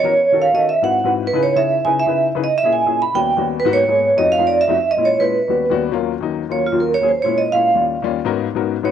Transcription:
Already playing: vibraphone C#5
0.03 grand piano E3 B3 C#4 F#4 A#4
0.32 grand piano D#3 C#4 F#4 A4
0.42 vibraphone F5
0.53 grand piano D#3 C#4 F#4 A4, vibraphone D#5
0.69 vibraphone E5
0.82 grand piano G#2 C4 E4 F#4 B4, vibraphone F#5
1.04 grand piano G#2 C4 E4 F#4 B4
1.27 vibraphone B4
1.33 grand piano C#3 D#4 E4 G#4 B4
1.43 vibraphone C#5
1.55 grand piano C#3 D#4 E4 G#4 C#5, vibraphone E5
1.85 grand piano C#3 D#4 E4 G#4 B4, vibraphone G#5
1.99 vibraphone E5
2.06 grand piano C#3 D#4 E4 G#4 B4
2.35 grand piano C#3 D#4 E4 G#4 B4
2.44 vibraphone D#5
2.58 vibraphone E5
2.63 grand piano A#2 C#4 E4 G#4
2.73 vibraphone G#5
2.85 grand piano A#2 C#4 E4 G#4
3.02 vibraphone B5
3.14 grand piano D#2 G3 B3 C#4 F#4, vibraphone G5
3.36 grand piano D#2 G3 B3 C#4 F#4
3.60 vibraphone B4
3.65 grand piano G#2 A#3 B3 D#4 F#4
3.73 vibraphone C#5
3.88 grand piano G#2 A#3 B3 D#4 G#4
4.17 grand piano F2 A3 C4 D#4 F#4, vibraphone D#5
4.32 vibraphone F5
4.38 grand piano F2 A3 C4 D#4 F4
4.47 vibraphone D5
4.61 vibraphone E5
4.67 grand piano F2 A3 C4 D#4 F#4
4.91 vibraphone D#5
4.97 grand piano A#2 G#3 C#4 E4
5.05 vibraphone C#5
5.18 grand piano A#2 G#3 C#4 E4, vibraphone B4
5.48 grand piano D#2 G3 B3 C#4 F#4
5.70 grand piano D#2 G3 B3 C#4 F#4
5.92 grand piano D#2 F#3 A#3 C#4 F4
6.21 grand piano D#2 F#3 A#3 C#4 D#4
6.49 grand piano D#2 F#3 A#3 C#4 F4, vibraphone C#5
6.66 vibraphone F4
6.72 grand piano D#2 F#3 A#3 C#4 F4
6.80 vibraphone A#4
6.94 vibraphone C#5
7.01 grand piano D#2 F#3 A#3 C#4 G#4
7.08 vibraphone C5
7.22 grand piano A#2 G#3 C#4 E4, vibraphone C#5
7.38 vibraphone D#5
7.52 grand piano A#2 G#3 C#4 E4, vibraphone F5
7.74 grand piano D#2 G3 C#4 F4
8.02 grand piano D#2 G3 C#4 F4
8.25 grand piano G#2 B3 C#4 D#4 F#4 A#4
8.55 grand piano G#2 B3 C#4 D#4 F#4 A#4
8.83 grand piano G#2 B3 C#4 D#4 F#4 B4, vibraphone C#5

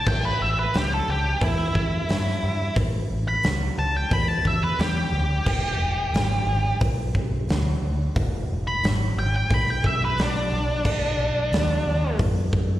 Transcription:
0.07 fingered electric bass A1, lead electric guitar G5, kick, crash
0.25 lead electric guitar B4
0.41 fingered electric bass A1, lead electric guitar E5
0.59 lead electric guitar B4
0.74 fingered electric bass C#2, lead electric guitar G4, snare, open hi-hat
0.94 lead electric guitar A4
1.08 fingered electric bass C#2, lead electric guitar G4
1.41 fingered electric bass E2, lead electric guitar E4, kick, open hi-hat
1.75 fingered electric bass E2, kick
2.09 fingered electric bass G2, snare, open hi-hat
2.28 snare
2.43 fingered electric bass G2
2.76 fingered electric bass A1, kick, open hi-hat
3.11 fingered electric bass A1
3.28 lead electric guitar B5
3.43 fingered electric bass C#2, snare, open hi-hat
3.78 fingered electric bass C#2, lead electric guitar A5
3.97 lead electric guitar G5
4.11 fingered electric bass E2, lead electric guitar B5, kick, open hi-hat
4.28 lead electric guitar A5
4.45 fingered electric bass E2, lead electric guitar E5, kick
4.64 lead electric guitar B4
4.79 fingered electric bass E2, lead electric guitar G4, snare, open hi-hat
5.12 fingered electric bass D2
5.46 fingered electric bass E1, kick, crash
5.79 fingered electric bass E1
6.13 fingered electric bass G#1, snare, open hi-hat
6.47 fingered electric bass G#1
6.81 fingered electric bass B1, kick, open hi-hat
7.15 fingered electric bass B1, kick
7.49 fingered electric bass D2, snare, open hi-hat
7.82 fingered electric bass D2
8.16 fingered electric bass E1, kick, open hi-hat
8.50 fingered electric bass E1
8.67 lead electric guitar B5
8.83 fingered electric bass G#1, snare, open hi-hat
9.17 fingered electric bass G#1, lead electric guitar G5
9.36 lead electric guitar G5
9.51 fingered electric bass B1, lead electric guitar B5, kick, open hi-hat
9.70 lead electric guitar G5
9.84 fingered electric bass B1, lead electric guitar E5, kick
10.05 lead electric guitar B4
10.18 fingered electric bass B1, snare, open hi-hat
10.22 lead electric guitar D4
10.52 fingered electric bass B1
10.85 fingered electric bass B1, kick, crash
11.18 fingered electric bass B1
11.52 fingered electric bass D#2, snare, open hi-hat
11.86 fingered electric bass D#2
12.19 fingered electric bass F#2, kick, open hi-hat
12.53 fingered electric bass F#2, kick

